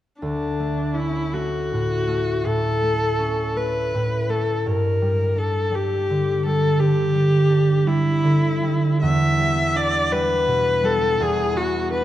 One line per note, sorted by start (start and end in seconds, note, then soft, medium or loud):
0.21 4.12 D2 soft
0.21 0.96 D4 soft
0.60 1.33 A3 soft
0.94 3.18 C#4 soft
0.94 1.35 E4 soft
1.33 2.06 A3 soft
1.33 2.47 F#4 medium
1.73 2.44 A2 soft
2.07 2.82 A3 soft
2.45 3.93 A2 soft
2.45 3.58 A4 medium
2.83 3.55 A3 soft
3.19 4.70 C#4 soft
3.56 4.28 A3 soft
3.56 4.32 B4 medium
3.95 4.71 A2 soft
4.29 4.69 A3 soft
4.29 4.68 A4 medium
4.66 8.56 G2 soft
4.66 5.40 A#4 soft
5.02 5.70 G3 soft
5.36 7.48 D4 soft
5.36 5.76 A4 medium
5.72 6.45 G3 soft
5.72 6.45 G4 medium
6.10 6.79 D3 soft
6.46 7.13 G3 soft
6.46 6.81 A4 medium
6.80 8.23 D3 soft
6.80 7.89 G4 medium
7.14 7.85 G3 soft
7.49 9.74 D4 soft
7.86 8.61 G3 soft
7.86 9.02 E4 medium
8.24 9.06 D3 soft
8.63 9.38 G3 soft
9.02 11.19 E2 soft
9.02 9.77 E5 medium
9.39 10.11 G3 soft
9.75 11.91 D4 soft
9.75 10.14 D5 medium
10.12 10.82 G3 soft
10.12 10.86 B4 medium
10.47 11.23 B2 soft
10.83 11.23 G3 soft
10.83 11.23 A4 medium
11.20 12.04 E2 soft
11.20 11.58 G#4 medium
11.55 12.04 B3 soft
11.55 11.92 F#4 medium
11.92 12.04 D4 soft
11.92 12.04 B4 medium